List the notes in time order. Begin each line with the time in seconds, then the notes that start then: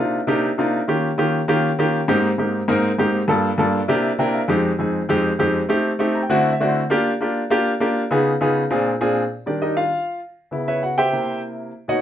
Already playing: C3 A#3 D4 D#4
0.00 F4
0.27 C3 A#3 D4 D#4 G4
0.58 C3 A#3 D4 D#4 F4
0.88 D#3 A#3 C#4 F4 G4
1.18 D#3 A#3 C#4 F4 G4
1.48 D#3 A#3 C#4 F4 G4
1.79 D#3 A#3 C#4 F4 G4
2.08 G#2 A#3 C4 D#4 G4
2.38 G#2 A#3 C4 D#4 G4
2.68 G#2 A#3 C4 D#4 A#4
2.99 G#2 A#3 C4 D#4 G4
3.28 G2 A#3 D4 F4 A4
3.58 G2 A#3 D4 F4 A4
3.88 C3 A#3 D4 E4 G4
4.18 C3 A#3 D4 E4 A#4 G5
4.34 F5
4.48 F2 G#3 C4 D#4 G4
4.79 F2 G#3 C4 D#4 G#4
5.09 F2 G#3 C4 D#4 G4
5.39 F2 G#3 C4 D#4 G4
5.69 A3 C4 D#4 G4
5.99 A3 C4 D#4 G4
6.15 A#5
6.23 G5
6.29 D3 A3 C4 E4 F#4 F#5
6.53 E5
6.60 D3 A3 C4 E4 F#4 D5
6.68 C5
6.90 A#3 D4 F4 G4
7.21 A#3 D4 F4 G4
7.50 A#3 D4 F4 G4
7.80 A#3 D4 F4 G4
8.11 C#3 B3 D#4 F4 G#4
8.41 C#3 B3 D#4 F4 G#4
8.70 A#2 C4 D4 F4 G#4
9.01 A#2 C4 D4 F4 G#4
9.46 D#3 G3 D4 G4 A#4 D5
9.62 D#4 G4 A#4 D#5
9.77 F4 F5
10.51 C#3 B3 E4
10.68 E4 B4 C#5 E5
10.83 F#4 F#5
10.98 G4 C5 E5 G5
11.12 C3 A#3 E4
11.88 B2 A#3 D#4 F#4 C#5 D#5 F#5